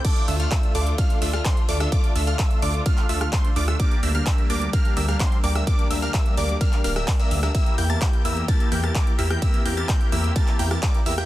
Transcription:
<<
  \new Staff \with { instrumentName = "Digital synth lead" } { \time 4/4 \key d \minor \tempo 4 = 128 d'''8 e'''16 f'''16 e'''8 d'''8 f'''8 e'''16 f'''16 c'''16 r16 d'''16 e'''16 | d'''8 e'''16 f'''16 e'''8 d'''8 f'''8 e'''16 f'''16 c'''16 r16 d'''16 e'''16 | d'''8 e'''16 f'''16 e'''8 d'''8 f'''8 e'''16 f'''16 c'''16 r16 d'''16 e'''16 | d'''8 e'''16 f'''16 e'''8 d'''8 f'''8 f'''16 e'''16 r16 e'''8 e'''16 |
e'''8 g'''16 a'''16 g'''8 e'''8 a'''8 g'''16 a'''16 d'''16 r16 e'''16 g'''16 | e'''8 g'''16 a'''16 g'''8 e'''8 a'''8 g'''16 a'''16 d'''16 r16 e'''16 g'''16 | }
  \new Staff \with { instrumentName = "Supersaw synth" } { \time 4/4 \key d \minor <a d' f' a' d''>8 <a d' f' a' e''>16 <a d' f' a' f''>16 <a f' e''>8 <a d' f' a' d''>8 <a d' f' a' f''>8 <a d' f' a' e''>16 <a d' f' a' f''>16 <a d'>16 r16 <a d' f' a' d''>16 <a d' f' a' e''>16 | <a d' f' a' d''>8 <a d' f' a' e''>16 <a d' f' a' f''>16 <a d' f' a' e''>8 <a d' f' a' d''>8 <a d' f' a' f''>8 <a d' f' a' e''>16 <a d' f' a' f''>16 r8 <a d' f' a' d''>16 <a d' f' a' e''>16 | <bes d' g' bes' d''>8 <bes d' g' bes' e''>16 <bes d' g' bes' f''>16 r8 <bes d' g' bes' d''>8 <bes d' g' bes' f''>8 <bes d' g' bes' e''>16 <bes d' g' bes' f''>16 <bes d' g' bes' c''>16 r16 <bes d' g' bes' d''>16 <bes d' g' bes' e''>16 | <bes d' g' bes' d''>8 <bes d' g' bes' e''>16 <bes d' g' bes' f''>16 <bes e''>8 <bes d' g' bes' d''>8 <bes d' g' bes' f''>8 <bes d' g' bes' f''>16 <bes d' g' bes' e''>16 r16 <bes d' g' bes' e''>8 <bes d' g' bes' e''>16 |
<bes e' bes' e''>8 <bes e' g' bes' g''>16 <bes e' g' bes' a''>16 r8 <bes e' g' bes' e''>8 <bes e' g' bes' a''>8 <bes e' g' bes' g''>16 <bes e' g' bes' a''>16 e'16 r16 <bes e' g' bes' e''>16 <bes e' g' bes' g''>16 | <bes e' g' bes' e''>8 <bes e' g' bes' g''>16 <bes e' g' bes' a''>16 <bes e' g' bes' g''>8 <bes e' g' bes' e''>8 <bes e' g' bes' a''>8 <bes e' g' bes' g''>16 <bes e' g' bes' a''>16 <g' d''>16 r16 <bes e' g' bes' e''>16 <bes e' g' bes' g''>16 | }
  \new Staff \with { instrumentName = "String section" } { \time 4/4 \key d \minor << { <d f'>1~ | <d f'>1 | <g d'>1~ | <g d'>1 |
<e g'>1~ | <e g'>1 | } \\ { a1~ | a1 | bes1~ | bes1~ |
bes1 | c'1 | } >> }
  \new Staff \with { instrumentName = "Detuned saw bass" } { \clef bass \time 4/4 \key d \minor r8 d,8 r8 d,8 r8 d,8 r8 d,8 | r8 d,8 r8 d,8 r8 d,8 r8 d,8 | r8 d,8 r8 d,8 r8 d,8 r8 d,8 | r8 d,8 r8 d,8 r8 d,,8 r8 d,8 |
r8 e,8 r8 e,8 r8 e,8 r8 e,8 | r8 e,8 r8 e,8 r8 e,8 r8 e,8 | }
  \new DrumStaff \with { instrumentName = "Drums" } \drummode { \time 4/4 <cymc hh bd cymr>16 hh16 hho16 hh16 <hc hh bd cymr>16 hh16 hho16 hh16 <hh bd cymr>16 hh16 hho16 <hh ss>16 <hc hh bd cymr>16 hh16 hho16 <hh ss>16 | <hh bd cymr>16 hh16 hho16 hh16 <hc hh bd cymr>16 hh16 hho16 hh16 <hh bd cymr>16 <hc hh>16 hho16 <hh ss>16 <hc hh bd cymr>16 hh16 hho16 <hh ss>16 | <hh bd cymr>16 hh16 hho16 hh16 <hc hh bd cymr>16 hh16 hho16 hh16 <hh bd cymr>16 hh16 hho16 <hh ss>16 <hc hh bd cymr>16 hh16 hho16 <hh ss>16 | <hh bd cymr>16 hh16 hho16 hh16 <hc hh bd cymr>16 hh16 hho16 hh16 <hh bd cymr>16 <hc hh>16 hho16 <hh ss>16 <hc hho bd cymr>16 hh16 hho16 <hh ss>16 |
<hh bd cymr>16 hh16 hho16 hh16 <hc hh bd cymr>16 hh16 hho16 hh16 <hh bd cymr>16 hh16 hho16 <hh ss>16 <hc hh bd cymr>16 hh16 hho16 <hh ss>16 | <hh bd cymr>16 hh16 hho16 hh16 <hc hh bd cymr>16 hh16 hho16 hh16 <hh bd cymr>16 <hc hh>16 hho16 <hh ss>16 <hc hh bd cymr>16 hh16 hho16 <hh ss>16 | }
>>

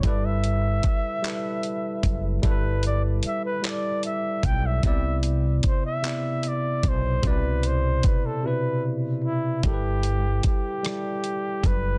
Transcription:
<<
  \new Staff \with { instrumentName = "Flugelhorn" } { \time 6/8 \key g \major \tempo 4. = 50 d''16 e''2~ e''8 r16 | b'8 d''8 e''16 b'16 d''8 e''8 g''16 e''16 | e''8 r8 c''16 e''8. d''8 c''8 | b'8 c''8 b'16 a'16 b'8 r8 e'8 |
g'4 g'4. b'8 | }
  \new Staff \with { instrumentName = "Tine electric piano" } { \time 6/8 \key g \major <g e' a' b'>4. <g e' a' b'>4. | <g e' a' b'>4. <g e' a' d''>4. | <c b e' d''>4. <c b e' d''>4. | <b, c e' d''>4. <b, c e' b'>4. |
<g e' a' bes' b'>4. <g e' a' d''>4. | }
  \new Staff \with { instrumentName = "Fretless electric bass" } { \clef bass \time 6/8 \key g \major g,,4 r4. fis,,8 | g,,4 r4. b,,8 | c,4 r4. b,,8 | c,4 r2 |
g,,4 r4. fis,,8 | }
  \new DrumStaff \with { instrumentName = "Drums" } \drummode { \time 6/8 <hh bd>8 hh8 <hh bd>8 <hc hh>8 hh8 <hh bd>8 | <hh bd>8 hh8 hh8 <hc hh>8 hh8 <hh bd>8 | <hh bd>8 hh8 <hh bd>8 <hc hh>8 hh8 <hh bd>8 | <hh bd>8 hh8 <hh bd>8 r4. |
<hh bd>8 hh8 <hh bd>8 <hh ss>8 hh8 <hh bd>8 | }
>>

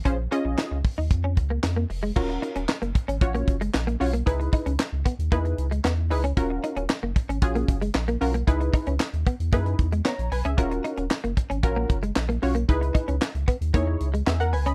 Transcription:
<<
  \new Staff \with { instrumentName = "Analog polysynth" } { \time 4/4 \key bes \phrygian \tempo 4 = 114 << { r1 | \key ees \phrygian r1 | r1 | r1 |
r2. <des'' bes''>8 <ces'' aes''>16 <aes' fes''>16~ | <aes' fes''>16 r2. r8. | r2. <aes' fes''>16 <bes' ges''>16 <ces'' aes''>16 <ees'' ces'''>16 | } \\ { <des' f' aes' c''>8 <des' f' aes' ees''>4 r2 r8 | <des' f' ges' bes'>4 r4 <des' f' ges' des''>8 r4 <des' f' ges' des''>8 | <ees' fes' aes' ces''>4 r4 <ees' fes' aes' ces''>8 r4 <ees' fes' aes' ces''>8 | <des' f' ges' bes'>4 r4 <des' f' ges' aes'>8 r4 <des' f' ges' bes'>8 |
<ees' fes' aes' ces''>4 r4 <ees' fes' aes' ces''>8 r4. | <des' f' ges' bes'>4 r4 <des' f' ges' bes'>8 r4 <des' f' ges' des''>8 | <ees' fes' aes' ces''>4 r4 <ees' fes' aes' des''>8 r4. | } >> }
  \new Staff \with { instrumentName = "Clean electric guitar" } { \time 4/4 \key bes \phrygian des'16 r16 des'16 r16 ees'16 r8 ees'16 r16 des'16 r16 bes16 r16 bes16 r16 aes16 | \key ees \phrygian r8 ees'16 des'16 r16 bes16 r16 des'16 r16 bes16 r16 aes16 r16 bes16 r16 bes16 | r8 ees'16 des'16 r8 ces'16 r16 bes16 r8 aes16 ces'16 r8 des'16 | r8 ees'16 des'16 r16 bes16 r16 des'16 r16 bes16 r16 aes16 r16 bes16 r16 bes16 |
r8 ees'16 des'16 r8 ces'16 r16 bes16 r8 aes16 ces'16 r8 des'16 | r8 ees'16 des'16 r16 bes16 r16 des'16 r16 bes16 r16 aes16 r16 bes16 r16 bes16 | r8 ees'16 des'16 r8 ces'16 r16 bes16 r8 aes16 ces'16 r8 des'16 | }
  \new Staff \with { instrumentName = "Sub bass" } { \clef bass \time 4/4 \key bes \phrygian bes,,8 r16 bes,,16 r16 des,16 r16 ees,16 f,8 des,8 f,8 f,,8 | \key ees \phrygian ees,,8 r16 ees,,16 r16 ges,,16 r16 aes,,16 bes,,8 ges,,8 bes,,8 ces,8 | des,8 r16 des,16 r16 des,16 r16 ees,16 fes,8 des,8 fes,8 des,8 | ees,,8 r16 ees,,16 r16 ges,,16 r16 aes,,16 bes,,8 ges,,8 bes,,8 ces,8 |
des,8 r16 des,16 r16 ees,16 r16 fes,16 ges,8 fes,8 r16 bes,,16 ces,16 des,16 | ees,,8 r16 ees,,16 r16 ges,,16 r16 aes,,16 bes,,8 ges,,8 bes,,8 ces,8 | des,8 r16 des,16 r16 des,16 r16 ees,16 fes,8 des,8 fes,8 des,8 | }
  \new DrumStaff \with { instrumentName = "Drums" } \drummode { \time 4/4 <hh bd>8 hh8 <hc hh sn>8 <hho bd>8 <hh bd>8 <hh bd>8 <hc hh sn>8 hho8 | <cymc bd>16 hh16 hh16 hh16 <hc sn>16 hh16 <hh bd>16 hh16 <hh bd>16 hh16 <hh bd>16 hh16 <hc sn>16 hh16 hho16 hh16 | <hh bd>16 hh16 <hh bd>16 hh16 <hc sn>8 <hh bd>16 hh16 <hh bd>16 hh16 hh16 hh16 <hc sn>8 hho16 hh16 | <hh bd>8 hh16 hh16 <hc sn>8 <hh bd>16 hh16 <hh bd>16 hh16 <hh bd>16 hh16 <hc sn>16 hh16 hho16 hh16 |
<hh bd>16 hh16 <hh bd>16 hh16 <hc sn>16 hh16 <hh bd>16 hh16 <hh bd>16 hh16 <hh bd>16 hh16 <hc sn>16 hh16 hho16 hh16 | <hh bd>16 hh16 hh16 hh16 <hc sn>16 hh16 <hh bd>16 hh16 <hh bd>8 <hh bd>16 hh16 <hc sn>16 hh16 hho16 hh16 | <hh bd>16 hh16 <hh bd>16 hh16 <hc sn>16 hh16 <hh bd>16 hh16 <hh bd>8 hh16 hh16 <hc sn>16 hh16 hho16 hh16 | }
>>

